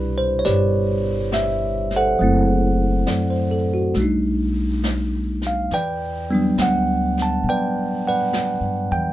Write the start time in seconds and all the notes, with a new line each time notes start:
Already playing: C2 B2 G3 D4 E4 G4 B4 D5
0.18 C5
0.39 C#5
0.45 G1 G4 B4 D5, brush sweep, snare
1.32 E5, snare, hi-hat pedal
1.91 snare
1.96 A4 C5 F#5
2.19 F#1 F#3 A3 C4, brush sweep
2.24 E4
3.07 F#2 D5, snare, hi-hat pedal
3.30 C5
3.51 A4
3.74 F#4
3.94 B1 G3 A3, brush sweep, snare
4.00 D4 D#4
4.83 snare, hi-hat pedal
5.42 snare
5.47 F5
5.71 E2 B4 D5 G5, brush sweep, snare
6.30 G3 B3 D4
6.34 F#3
6.58 D2, snare, hi-hat pedal
6.62 F#5
7.17 snare
7.22 A5
7.44 B2, brush sweep
7.49 B4 D5 G5
8.07 B4 D5 F#5
8.33 snare, hi-hat pedal
8.61 G2
8.91 E2 G5